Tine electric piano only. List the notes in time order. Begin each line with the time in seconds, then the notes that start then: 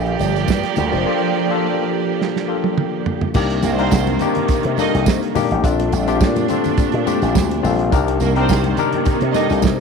Already playing: A#3 D4 F4 A4
0.91 A#3 D4 F4 C5
1.05 A#3 D4 F4 A4
1.49 A#3 D4 F4 A4
2.48 A#3 D4 F4 A4
3.35 A#3 D4 D#4 G4
3.78 A#3 D4 D#4 A#4
4.21 A#3 D4 D#4 G4
4.78 A#3 D4 D#4 A4
5.34 A#3 D4 D#4 G4
5.64 C4 D4 F4 A4
6.07 C4 D4 F4 G4
6.49 C4 D4 F4 A4
7.06 C4 D4 F4 G4
7.63 C4 D4 F4 A4
7.91 D4 D#4 G4 A#4
8.36 D4 D#4 G4 A#4
8.78 D4 D#4 G4 A#4
9.35 D4 D#4 G4 A4